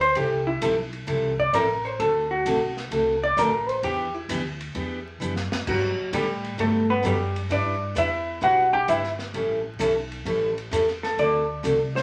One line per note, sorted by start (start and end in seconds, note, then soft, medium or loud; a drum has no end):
0.00 0.14 D2 medium
0.00 0.15 C5 medium
0.00 ride soft
0.15 0.60 C2 medium
0.15 0.39 C3 medium
0.15 0.39 E3 medium
0.15 0.39 G3 medium
0.15 0.39 C4 medium
0.15 0.39 E4 medium
0.15 0.46 G4 medium
0.15 0.39 A4 medium
0.15 ride medium
0.47 0.90 E4 medium
0.61 1.06 B1 medium
0.61 0.74 C3 medium
0.61 0.74 E3 medium
0.61 0.74 G3 medium
0.61 0.74 C4 medium
0.61 0.74 E4 medium
0.61 0.74 A4 medium
0.61 hi-hat pedal medium
0.61 ride medium
0.93 ride soft
1.07 1.52 C2 medium
1.07 1.30 C3 medium
1.07 1.30 E3 medium
1.07 1.31 G3 medium
1.07 1.31 C4 medium
1.07 1.31 E4 medium
1.07 1.31 A4 medium
1.07 ride medium
1.39 1.53 D5 loud
1.39 kick soft
1.53 1.98 A1 medium
1.53 1.66 C3 medium
1.53 1.66 E3 medium
1.53 1.66 G3 medium
1.53 1.66 C4 medium
1.53 1.66 E4 medium
1.53 1.66 A4 medium
1.53 1.85 A#4 medium
1.53 hi-hat pedal medium
1.53 ride medium
1.85 1.99 C5 medium
1.99 2.44 D2 medium
1.99 2.23 D3 medium
1.99 2.23 A3 medium
1.99 2.23 C4 medium
1.99 2.23 F#4 medium
1.99 2.30 A4 medium
1.99 2.23 A4 medium
1.99 ride medium
2.31 2.73 F#4 medium
2.45 2.90 B1 medium
2.45 2.58 D3 medium
2.45 2.58 A3 medium
2.45 2.58 C4 medium
2.45 2.58 F#4 medium
2.45 2.58 A4 loud
2.45 hi-hat pedal medium
2.45 ride medium
2.77 snare soft
2.91 3.36 C2 medium
2.91 3.14 D3 medium
2.91 3.15 A3 medium
2.91 3.15 C4 medium
2.91 3.15 F#4 medium
2.91 3.15 A4 medium
2.91 ride medium
3.24 3.37 D5 loud
3.37 3.81 A1 medium
3.37 3.49 D3 medium
3.37 3.50 A3 medium
3.37 3.50 C4 medium
3.37 3.50 F#4 medium
3.37 3.50 A4 medium
3.37 3.69 A#4 medium
3.37 hi-hat pedal medium
3.37 ride medium
3.69 3.83 C5 loud
3.69 ride soft
3.83 4.27 E2 medium
3.83 4.07 E3 medium
3.83 4.07 B3 medium
3.83 4.07 D4 medium
3.83 4.07 G4 medium
3.83 4.14 G4 medium
3.83 ride medium
4.14 4.60 E4 medium
4.29 4.73 D2 medium
4.29 4.41 E3 medium
4.29 4.42 B3 medium
4.29 4.42 D4 medium
4.29 4.42 G4 medium
4.29 hi-hat pedal medium
4.29 ride medium
4.61 ride soft
4.75 5.19 E2 medium
4.75 4.98 E3 medium
4.75 4.98 B3 medium
4.75 4.98 D4 medium
4.75 4.99 G4 medium
4.75 ride soft
5.20 5.50 F#2 medium
5.20 5.33 E3 medium
5.20 5.33 B3 medium
5.20 5.33 D4 medium
5.20 5.34 G4 medium
5.20 hi-hat pedal medium
5.36 snare medium
5.52 muted upright bass stroke soft
5.52 snare medium
5.67 5.96 G2 medium
5.67 5.90 D3 soft
5.67 5.90 F#3 medium
5.67 6.11 F#3 medium
5.67 5.91 B3 medium
5.67 5.91 D4 medium
5.67 6.11 F#4 medium
5.67 5.91 G4 medium
5.67 kick medium
5.67 crash medium
5.98 muted upright bass stroke soft
6.12 6.57 A2 medium
6.12 6.25 D3 medium
6.12 6.25 F#3 medium
6.12 6.56 G3 medium
6.12 6.25 B3 medium
6.12 6.25 D4 medium
6.12 6.25 G4 medium
6.12 6.56 G4 medium
6.12 hi-hat pedal medium
6.12 ride medium
6.44 ride soft
6.58 7.03 G2 medium
6.58 6.82 D3 medium
6.58 6.82 F#3 medium
6.58 6.90 A3 medium
6.58 6.82 B3 medium
6.58 6.82 D4 medium
6.58 6.82 G4 medium
6.58 6.90 A4 medium
6.58 ride medium
6.90 7.04 B3 medium
6.90 7.04 B4 medium
7.03 7.49 F#2 medium
7.03 7.16 D3 medium
7.03 7.16 F#3 medium
7.03 7.36 G3 soft
7.03 7.16 B3 medium
7.03 7.16 D4 medium
7.03 7.17 G4 medium
7.03 7.36 G4 medium
7.03 hi-hat pedal medium
7.03 ride medium
7.36 ride soft
7.49 7.95 G2 medium
7.49 7.73 G3 medium
7.49 7.74 D4 medium
7.49 7.94 D4 medium
7.49 7.74 E4 medium
7.49 7.74 B4 medium
7.49 7.94 D5 medium
7.49 ride medium
7.95 8.41 E2 medium
7.95 8.08 G3 medium
7.95 8.09 D4 medium
7.95 8.09 E4 medium
7.95 8.40 E4 soft
7.95 8.09 B4 loud
7.95 8.40 E5 medium
7.95 hi-hat pedal medium
7.95 ride medium
8.41 8.87 B1 medium
8.41 8.65 G3 medium
8.41 8.65 D4 medium
8.41 8.66 E4 medium
8.41 8.73 F#4 medium
8.41 8.66 B4 medium
8.41 8.73 F#5 loud
8.41 ride medium
8.73 8.88 G4 medium
8.73 8.88 G5 loud
8.88 9.33 G1 medium
8.88 9.01 G3 medium
8.88 9.01 D4 medium
8.88 9.01 E4 medium
8.88 9.08 E4 medium
8.88 9.01 B4 medium
8.88 9.08 E5 medium
8.88 hi-hat pedal medium
8.88 ride medium
9.04 snare soft
9.19 snare soft
9.34 9.79 A1 medium
9.34 9.58 E3 medium
9.34 9.58 G3 medium
9.34 9.58 C#4 medium
9.34 9.58 E4 medium
9.34 9.58 A4 medium
9.34 ride medium
9.79 10.25 B1 loud
9.79 9.92 E3 medium
9.79 9.92 G3 medium
9.79 9.92 C#4 medium
9.79 9.93 E4 medium
9.79 9.93 A4 medium
9.79 hi-hat pedal medium
9.79 ride medium
10.12 ride soft
10.25 10.71 A1 medium
10.25 10.49 E3 medium
10.25 10.50 G3 medium
10.25 10.50 C#4 medium
10.25 10.50 E4 medium
10.25 10.50 A4 medium
10.25 ride medium
10.58 ride soft
10.71 11.17 E2 medium
10.71 10.84 E3 medium
10.71 10.84 G3 medium
10.71 10.85 C#4 medium
10.71 10.85 E4 medium
10.71 10.85 A4 medium
10.71 hi-hat pedal medium
10.71 ride medium
10.88 snare soft
11.03 11.18 A4 medium
11.03 snare soft
11.17 11.63 D2 medium
11.17 11.42 D3 medium
11.17 11.42 A3 medium
11.17 11.42 C4 medium
11.17 11.42 F#4 medium
11.17 11.42 A4 medium
11.17 11.92 D5 medium
11.17 ride medium
11.63 12.03 C2 loud
11.63 11.76 D3 medium
11.63 11.77 A3 medium
11.63 11.77 C4 medium
11.63 11.77 F#4 medium
11.63 11.77 A4 medium
11.63 hi-hat pedal medium
11.63 ride medium
11.96 12.03 C5 medium
11.96 snare medium
11.96 ride soft